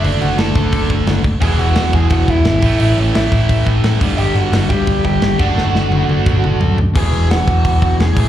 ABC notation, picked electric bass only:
X:1
M:4/4
L:1/8
Q:1/4=174
K:Dlyd
V:1 name="Picked electric bass" clef=bass
F,,, F,,, F,,, F,,, F,,, F,,, F,,,2 | E,,, E,,, E,,, E,,, E,,, E,,, G,,, A,,, | A,,, A,,, A,,, A,,, A,,, A,,, A,, =G,,, | =G,,, G,,, G,,, G,,, G,,, G,,, G,,, F,,, |
F,,, F,,, F,,, F,,, F,,, F,,, F,,2 | E,,, E,,, E,,, E,,, E,,, E,,, E,,, A,,, |]